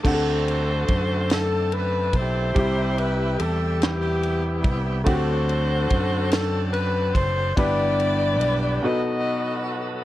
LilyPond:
<<
  \new Staff \with { instrumentName = "Saxophone section" } { \time 6/8 \key d \mixolydian \tempo 4. = 48 << { c''4. a'8 b'8 c''8~ | c''8 b'8 a'8 g'4 r8 | c''4. a'8 b'8 c''8 | d''4. dis''4 r8 | } \\ { <fis' a'>4. r4 <e' g'>8~ | <e' g'>4 r8 <b e'>4. | <fis' a'>4. r4. | b'4. <fis' a'>4. | } >> }
  \new Staff \with { instrumentName = "Grand piano" } { \time 6/8 \key d \mixolydian <a c' d' g' a' fis''>2. | <g e' g'>2. | <a c' d' fis' g' a'>2. | <b d' e' g' b'>4. <b dis' fis' a' b'>4. | }
  \new Staff \with { instrumentName = "Grand piano" } { \clef bass \time 6/8 \key d \mixolydian d4. r4. | c4. r4. | d4. r4. | g,4. b,4. | }
  \new Staff \with { instrumentName = "Tonewheel organ" } { \time 6/8 \key d \mixolydian <a c' d' a'>2. | <c g e' g'>2. | <fis c' d' a'>2. | <e b d' fis' g'>4. <fis b dis' a'>4. | }
  \new Staff \with { instrumentName = "Fingered electric bass" } { \clef bass \time 6/8 \key d \mixolydian d,4 fis,4. b,,8 | c,4 e,4. c,8 | d,4 fis,4. fis,,8 | g,,4 b,,8 r4. | }
  \new DrumStaff \with { instrumentName = "Drums" } \drummode { \time 6/8 <cymc bd>8 cymr8 <bd cymr>8 <cymr sn>8 cymr8 <bd cymr>8 | <bd cymr>8 cymr8 cymr8 <cymr sn>8 cymr8 <bd cymr>8 | <bd cymr>8 cymr8 <bd cymr>8 <cymr sn>8 cymr8 <bd cymr>8 | <bd cymr>8 cymr8 cymr8 r4. | }
>>